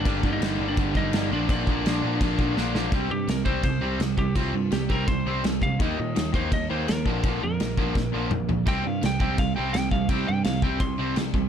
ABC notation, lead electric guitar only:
X:1
M:4/4
L:1/16
Q:1/4=167
K:Cm
V:1 name="Lead electric guitar"
[Dd]3 [Ee]4 [Dd]3 [Ee]4 [Dd]2 | [Dd]12 z4 | z2 G2 B2 c2 c4 z2 G2 | F4 G2 B2 c4 z2 f2 |
e6 c2 e2 c2 B4- | B2 B12 z2 | g2 f2 g2 g2 f2 g2 g2 f2 | g2 g2 f2 g2 c'4 z4 |]